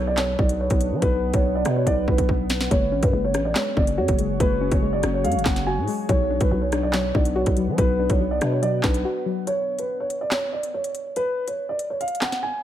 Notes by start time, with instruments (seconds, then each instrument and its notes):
Already playing: 808-style bass B1, ambient pad B3 D4 B4 F#5
0.07 grand piano D5
0.17 grand piano C#5, snare, clap, closed hi-hat
0.39 808-style bass B1, grand piano D5, kick
0.49 closed hi-hat
0.61 grand piano C#5
0.70 808-style bass B1, kick, closed hi-hat
0.81 closed hi-hat
0.92 808-style bass F#3
1.02 808-style bass B1, grand piano B4, kick, closed hi-hat
1.33 808-style bass B1, grand piano C#5, kick, closed hi-hat
1.55 grand piano D5
1.65 808-style bass B2, cross-stick, closed hi-hat
1.76 grand piano C#5
1.87 808-style bass B1, grand piano D5, kick, closed hi-hat
2.08 808-style bass B1, grand piano B4, kick
2.18 kick, closed hi-hat
2.29 kick
2.50 snare, closed hi-hat
2.61 snare
2.71 808-style bass F#1, ambient pad F#3 F#4 G#4 C#5, synth pluck G#3, grand piano C#5, kick, closed hi-hat
2.92 808-style bass A1, synth pluck C#4
3.03 808-style bass F#2, grand piano B4, kick, closed hi-hat
3.13 808-style bass F#1, synth pluck G#3
3.25 grand piano C#5
3.34 808-style bass A1, synth pluck C#4, cross-stick, closed hi-hat
3.45 grand piano D5
3.55 synth pluck G#3, grand piano C#5, snare, clap, closed hi-hat
3.76 808-style bass F#1, synth pluck C#4, grand piano D5, kick
3.87 closed hi-hat
3.98 808-style bass F#2, synth pluck F#4, grand piano C#5
4.08 808-style bass F#1, kick, closed hi-hat
4.19 synth pluck G#3, closed hi-hat
4.40 808-style bass F#1, synth pluck G#3, grand piano B4, kick, closed hi-hat
4.61 synth pluck C#4
4.71 808-style bass F#1, grand piano C#5, kick, closed hi-hat
4.82 synth pluck G#3
4.93 grand piano D5
5.03 808-style bass F#1, synth pluck C#4, cross-stick, closed hi-hat
5.14 grand piano C#5
5.24 808-style bass F#2, synth pluck G#3, grand piano F5, closed hi-hat
5.32 808-style bass F#1, closed hi-hat
5.39 closed hi-hat
5.45 808-style bass F#1, synth pluck C#4, grand piano F#5, kick, snare, clap
5.56 snare, closed hi-hat
5.67 synth pluck F#4, grand piano G#5
5.77 808-style bass A2
5.88 synth pluck G#3, open hi-hat
6.09 808-style bass B1, synth pluck F#3, ambient pad B3 D4 B4 F#5, grand piano C#5, kick, closed hi-hat
6.30 synth pluck D4
6.41 808-style bass B1, grand piano B4, kick, closed hi-hat
6.51 808-style bass B1, synth pluck F#3
6.62 grand piano C#5
6.72 synth pluck D4, cross-stick, closed hi-hat
6.83 grand piano D5
6.93 synth pluck F#3, grand piano C#5, snare, clap, closed hi-hat
7.15 808-style bass B1, synth pluck D4, grand piano D5, kick
7.25 closed hi-hat
7.36 synth pluck F#4, grand piano C#5
7.46 808-style bass B1, kick, closed hi-hat
7.57 synth pluck F#3, closed hi-hat
7.68 808-style bass F#3
7.78 808-style bass B1, synth pluck F#3, grand piano B4, kick, closed hi-hat
7.99 synth pluck D4
8.10 808-style bass B1, grand piano C#5, kick, closed hi-hat
8.20 synth pluck F#3
8.31 grand piano D5
8.41 808-style bass B2, synth pluck D4, cross-stick, closed hi-hat
8.52 grand piano C#5
8.62 synth pluck F#3, grand piano D5, closed hi-hat
8.83 808-style bass B1, synth pluck D4, grand piano B4, kick, snare, clap
8.94 closed hi-hat
9.05 synth pluck F#4
9.26 synth pluck F#3
9.47 grand piano C#5, closed hi-hat
9.79 grand piano B4, closed hi-hat
10.00 grand piano C#5
10.10 closed hi-hat
10.21 grand piano D5
10.31 grand piano C#5, snare, clap, closed hi-hat
10.53 grand piano D5
10.63 closed hi-hat
10.74 grand piano C#5
10.84 closed hi-hat
10.95 closed hi-hat
11.16 grand piano B4, closed hi-hat
11.48 grand piano C#5, closed hi-hat
11.69 grand piano D5
11.79 closed hi-hat
11.90 grand piano C#5
12.01 grand piano F5, closed hi-hat
12.08 closed hi-hat
12.15 closed hi-hat
12.21 grand piano F#5, snare, clap
12.32 snare, closed hi-hat
12.43 grand piano G#5